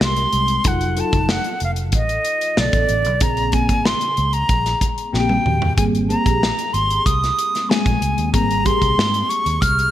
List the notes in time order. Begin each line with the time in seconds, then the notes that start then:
Already playing: G3
0.00 C2 G#3 C4 G4 A#4 C6, snare
0.17 closed hi-hat
0.33 C2, closed hi-hat
0.48 closed hi-hat
0.64 F1 F#3 D#4 F4 A4 F#5, kick, closed hi-hat
0.81 closed hi-hat
0.96 F#3 D#4 F4 A4 A5, closed hi-hat
1.13 F#1, kick, closed hi-hat
1.29 F#5, snare
1.44 closed hi-hat
1.60 F1, closed hi-hat
1.64 F5
1.76 closed hi-hat
1.92 A1 D#5, kick, closed hi-hat
2.09 closed hi-hat
2.25 closed hi-hat
2.41 closed hi-hat
2.57 B1 C#3 B3 A4 D5, snare
2.63 D3
2.73 A1, kick, closed hi-hat
2.89 A1, closed hi-hat
3.05 B1, closed hi-hat
3.21 A#1 C#3 A#3 C4 G#4 A#5, kick, closed hi-hat
3.37 closed hi-hat
3.52 C#3 A#3 C4 G#4 G#5, kick, closed hi-hat
3.69 G#1, kick, closed hi-hat
3.85 C6, snare
4.01 closed hi-hat
4.17 C#2, closed hi-hat
4.33 A#5, closed hi-hat
4.49 A#1, kick, closed hi-hat
4.66 snare, closed hi-hat
4.81 kick, closed hi-hat
4.98 closed hi-hat
5.13 A#1 C#3 A#3 C4 F#4 G5, snare
5.20 G4
5.29 high tom
5.46 D#2, mid tom
5.62 floor tom
5.77 G#1 G3 A#3 C4 G#4 G#5, kick, closed hi-hat
5.95 closed hi-hat
6.09 A#3 C4 G4 G#4 A#5, closed hi-hat
6.26 A#1, kick, closed hi-hat
6.43 snare
6.59 closed hi-hat
6.73 G#1 C6, closed hi-hat
6.90 closed hi-hat
7.06 C2 D#6, kick, closed hi-hat
7.24 snare, closed hi-hat
7.39 closed hi-hat
7.55 snare, closed hi-hat
7.69 G#3 A#3 C4 G#4 G#5, snare
7.86 A#1, kick, closed hi-hat
8.02 C#2, closed hi-hat
8.18 D#2, closed hi-hat
8.33 G#1 G3 A#3 C4 G#4 A#5, kick, closed hi-hat
8.51 closed hi-hat
8.65 A#3 C4 G4 G#4 C6, kick, closed hi-hat
8.82 C2, kick, closed hi-hat
8.97 G#2, snare
9.14 closed hi-hat
9.29 C#6, closed hi-hat
9.46 D#2, closed hi-hat
9.61 C2 F6, kick, closed hi-hat
9.79 closed hi-hat